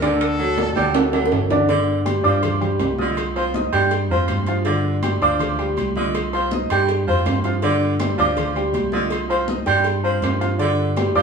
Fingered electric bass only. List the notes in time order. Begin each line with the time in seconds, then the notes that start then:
Already playing: D2
0.76 D2
1.31 G1
2.25 G2
2.80 C2
3.73 G2
4.10 F2
4.29 G2
5.22 D2
5.78 C2
6.70 G2
7.08 F2
7.26 G2
8.19 D2
8.74 C2
9.67 G2
10.22 G2
11.15 G2